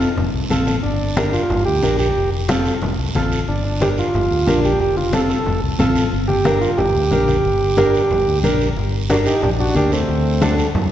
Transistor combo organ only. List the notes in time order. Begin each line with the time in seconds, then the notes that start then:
0.83 D4
1.33 F4
1.65 G4
1.99 G4
3.48 D4
3.65 D4
3.82 G4
3.99 F4
4.65 G4
4.81 G4
4.97 F4
5.14 A4
5.30 A4
6.28 G4
6.61 F4
6.78 G4
9.10 D4 F#4
9.26 D#4 G4
9.43 D4 G4
9.60 D4 F#4
9.76 D4 G4
9.93 A3 C4